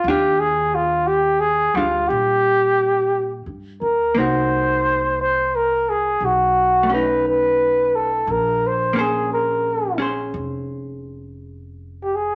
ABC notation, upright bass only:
X:1
M:4/4
L:1/8
Q:"Swing" 1/4=58
K:Ebmix
V:1 name="Upright bass" clef=bass
E,,3 =D,, B,,2- (3B,, G,, D,, | C,,4 =B,,,4 | B,,,4 F,,,4 |]